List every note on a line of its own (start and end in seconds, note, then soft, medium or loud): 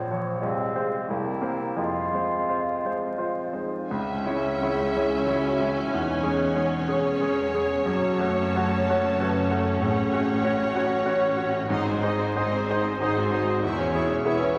0.00 0.40 A#1 medium
0.00 0.40 F3 medium
0.00 0.44 C#5 soft
0.11 0.40 F3 soft
0.11 0.40 C#5 soft
0.41 1.08 C2 medium
0.41 1.11 G#3 medium
0.41 1.10 C4 medium
0.41 1.09 F5 soft
0.75 1.06 G#3 soft
0.75 1.06 C5 soft
1.09 1.77 C2 medium
1.09 1.77 A#3 soft
1.09 1.77 E4 medium
1.09 1.80 G5 soft
1.41 1.74 A#3 soft
1.41 1.75 C5 soft
1.77 3.84 F2 soft
1.77 3.51 G#3 soft
1.77 3.50 F4 medium
1.77 3.55 F5 soft
2.14 2.46 G#3 soft
2.14 2.46 C5 soft
2.49 2.81 F4 soft
2.49 2.81 C5 soft
2.85 3.16 G#3 soft
2.85 3.16 C5 soft
3.18 3.50 F4 soft
3.18 3.51 C5 soft
3.53 3.85 G#3 soft
3.53 3.86 D#4 medium
3.53 3.85 C5 soft
3.88 5.87 C#2 medium
3.88 4.25 C#2 medium
3.88 7.82 C#4 medium
3.88 4.61 C#4 medium
3.88 7.82 G#5 medium
3.92 5.88 E5 medium
4.26 4.58 G#3 medium
4.26 4.58 E4 medium
4.26 4.58 C#5 medium
4.60 4.92 G#3 soft
4.60 4.92 E4 medium
4.60 5.26 G#4 medium
4.60 4.92 C#5 medium
4.96 5.24 G#3 soft
4.96 5.25 E4 soft
4.96 5.24 C#5 medium
5.27 5.56 G#3 medium
5.27 5.56 E4 medium
5.27 5.59 F#4 medium
5.27 5.56 C#5 medium
5.59 5.88 G#3 soft
5.59 5.91 E4 medium
5.59 5.88 E4 soft
5.59 5.89 C#5 medium
5.91 7.83 E1 medium
5.91 7.82 E2 medium
5.91 6.23 E2 medium
5.91 6.53 D#4 medium
5.91 9.82 C#5 medium
6.23 6.52 G#3 medium
6.23 6.51 G#4 soft
6.23 6.52 C#5 medium
6.55 6.84 G#3 medium
6.55 7.21 C#4 medium
6.55 6.84 G#4 medium
6.55 6.84 C#5 medium
6.88 7.18 G#3 soft
6.88 7.17 G#4 soft
6.88 7.18 C#5 medium
7.20 7.50 G#3 medium
7.20 7.50 G#4 medium
7.20 7.51 C#5 medium
7.54 7.84 G#3 soft
7.54 7.84 G#4 medium
7.54 7.84 G#4 soft
7.54 7.84 C#5 medium
7.86 9.78 F#1 medium
7.86 8.19 F#2 medium
7.86 9.78 F#2 medium
7.86 11.66 C#4 medium
7.86 8.54 F#4 medium
7.86 9.82 A5 medium
8.19 8.51 A3 medium
8.19 8.52 F#4 soft
8.19 8.52 C#5 medium
8.56 8.85 A3 medium
8.56 8.85 F#4 medium
8.56 9.20 C#5 medium
8.56 8.85 C#5 medium
8.89 9.17 A3 soft
8.89 9.17 F#4 medium
8.89 9.18 C#5 medium
9.19 9.48 A3 medium
9.19 9.48 F#4 medium
9.19 9.50 B4 medium
9.19 9.48 C#5 medium
9.51 9.79 A3 soft
9.51 9.79 F#4 medium
9.51 9.82 A4 medium
9.51 9.79 C#5 medium
9.80 11.66 A1 medium
9.80 10.12 A2 medium
9.80 11.66 A2 medium
9.80 10.43 G#4 medium
9.80 11.66 C#5 medium
9.80 11.64 F#5 medium
10.13 10.41 C#4 medium
10.13 10.41 F#4 medium
10.13 10.42 C#5 medium
10.42 10.72 C#4 medium
10.42 11.05 F#4 medium
10.42 10.72 F#4 medium
10.42 10.72 C#5 medium
10.74 11.03 C#4 medium
10.74 11.03 F#4 medium
10.74 11.04 C#5 medium
11.06 11.34 C#4 medium
11.06 11.34 F#4 medium
11.06 11.35 C#5 medium
11.37 11.66 C#4 medium
11.37 11.66 F#4 medium
11.37 11.66 C#5 medium
11.68 12.29 G#1 medium
11.68 12.29 G#2 medium
11.68 12.02 G#2 medium
11.68 12.32 D#4 medium
11.68 11.84 D#4 medium
11.68 11.85 D#5 medium
11.68 11.84 C6 medium
11.85 12.02 C4 medium
11.85 12.03 C5 medium
11.85 12.02 G#5 medium
12.01 12.19 D#4 medium
12.01 12.33 D#4 medium
12.01 12.33 G#4 medium
12.01 12.34 C5 medium
12.01 12.20 D#5 medium
12.01 12.19 C6 medium
12.18 12.36 C4 medium
12.18 12.38 C5 medium
12.18 12.36 G#5 medium
12.35 12.93 G#1 medium
12.35 12.93 G#2 medium
12.35 12.51 D#4 medium
12.35 12.65 D#4 medium
12.35 13.00 G#4 medium
12.35 12.65 G#4 medium
12.35 12.65 C5 medium
12.35 12.51 C6 medium
12.40 12.53 D#5 medium
12.52 12.68 C4 medium
12.52 12.69 C5 medium
12.52 12.68 G#5 medium
12.67 12.84 D#4 medium
12.67 12.97 D#4 medium
12.67 12.98 G#4 medium
12.67 12.98 C5 medium
12.67 12.84 D#5 medium
12.67 12.84 C6 medium
12.84 13.00 C4 medium
12.84 13.00 C5 medium
12.84 13.00 G#5 medium
12.99 13.56 G#1 medium
12.99 13.56 G#2 medium
12.99 13.15 D#4 medium
12.99 13.29 D#4 medium
12.99 13.62 F#4 medium
12.99 13.30 G#4 medium
12.99 13.30 C5 medium
12.99 13.15 D#5 medium
12.99 13.15 C6 medium
13.16 13.32 C4 medium
13.16 13.31 C5 medium
13.16 13.32 G#5 medium
13.30 13.47 D#4 medium
13.30 13.60 D#4 medium
13.30 13.61 G#4 medium
13.30 13.61 C5 medium
13.30 13.47 D#5 medium
13.30 13.47 C6 medium
13.47 13.63 C4 medium
13.47 13.64 C5 medium
13.47 13.63 G#5 soft
13.61 14.17 E1 medium
13.61 13.93 E2 medium
13.61 14.18 E2 medium
13.61 13.77 E4 medium
13.61 14.24 G#4 medium
13.61 13.78 E5 medium
13.61 13.77 C#6 medium
13.77 13.94 C#4 medium
13.77 13.94 C#5 medium
13.77 13.93 G#5 medium
13.94 14.09 E4 medium
13.94 14.22 E4 medium
13.94 14.22 G#4 medium
13.94 14.22 C#5 medium
13.94 14.09 E5 medium
13.94 14.09 C#6 medium
14.08 14.24 C#4 soft
14.08 14.26 C#5 medium
14.08 14.24 G#5 medium
14.23 14.58 E1 medium
14.23 14.58 E2 medium
14.23 14.39 E4 medium
14.23 14.53 E4 medium
14.23 14.53 G#4 medium
14.23 14.58 B4 medium
14.23 14.54 C#5 medium
14.23 14.39 E5 medium
14.23 14.38 C#6 medium
14.40 14.57 C#4 medium
14.40 14.56 C#5 medium
14.40 14.56 G#5 medium
14.53 14.58 E4 medium
14.53 14.58 C#6 medium